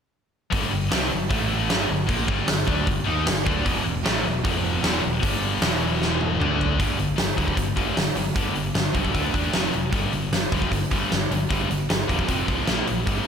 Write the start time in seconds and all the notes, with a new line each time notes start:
0.50 G1 G2 D3 G3, kick, open hi-hat
0.70 G1 G2 D3
0.91 C2 C3 G3 C4, snare, open hi-hat
1.10 G1 G2 D3
1.29 A1 A2 E3 A3, kick, open hi-hat
1.69 G1 G2 D3 G3, snare, open hi-hat
1.89 G1 G2 D3
2.07 A#1 A#2 F3 A#3, kick, open hi-hat
2.27 G1 G2 D3 G3, kick
2.47 G1 G2 D3, snare, open hi-hat
2.67 D2 D3 A3 D4, kick
2.87 G1 G2 D3, kick, open hi-hat
3.04 D#2 D#3 A#3 D#4
3.26 G1 G2 D3, snare, open hi-hat
3.45 D2 D3 A3 D4, kick
3.64 E1 E2 B2 E3, kick, open hi-hat
3.84 E1 E2 B2
4.04 A1 A2 E3 A3, snare, open hi-hat
4.25 E1 E2 B2
4.44 F1 F2 C3 F3, kick, open hi-hat
4.82 E1 E2 B2 E3, snare, open hi-hat
5.02 E1 E2 B2
5.22 G1 G2 D3 G3, kick, open hi-hat
5.62 E1 E2 B2 E3, snare, open hi-hat
6.02 snare
6.21 high tom
6.39 D2 D3 A3 D4, mid tom
6.61 floor tom
6.78 G1 G2 D3 G3, kick, open hi-hat
6.97 G1 G2 D3, open hi-hat
7.16 G1 G2 D3, snare, open hi-hat
7.37 D2 G2 D3 G3, kick, open hi-hat
7.48 kick
7.56 G1 G2 D3, kick, open hi-hat
7.76 G1 G2 D3 G3, kick, open hi-hat
7.96 G1 G2 D3, snare, open hi-hat
8.15 G1 G2 D3, open hi-hat
8.36 G1 G2 D3 G3, kick, open hi-hat
8.55 G1 G2 D3, open hi-hat
8.74 G1 G2 D3, snare, open hi-hat
8.93 C#2 G2 D3 G3, kick, open hi-hat
9.05 kick
9.13 D2 D3 A3 D4, kick, open hi-hat
9.34 E2 D3 A3 D4, kick, open hi-hat
9.53 F1 F2 C3 F3, snare, open hi-hat
9.72 F1 F2 C3, open hi-hat
9.93 G1 G2 D3 G3, kick, open hi-hat
10.13 G1 G2 D3, open hi-hat
10.32 G1 G2 D3, snare, open hi-hat
10.52 D2 G2 D3 G3, kick, open hi-hat
10.62 kick
10.71 G1 G2 D3, kick, open hi-hat
10.91 G1 G2 D3 G3, kick, open hi-hat
11.11 G1 G2 D3, snare, open hi-hat
11.31 G1 G2 D3, open hi-hat
11.49 G1 G2 D3 G3, kick, open hi-hat
11.68 G1 G2 D3, open hi-hat
11.89 G1 G2 D3, snare, open hi-hat
12.08 E1 G2 D3 G3, kick, open hi-hat
12.19 kick
12.28 F1 F2 C3 F3, kick, open hi-hat
12.47 C2 F2 C3 F3, kick, open hi-hat
12.67 A#1 A#2 F3 A#3, snare, open hi-hat
12.87 A#1 A#2 F3, open hi-hat
13.07 G1 G2 D3 G3, kick, open hi-hat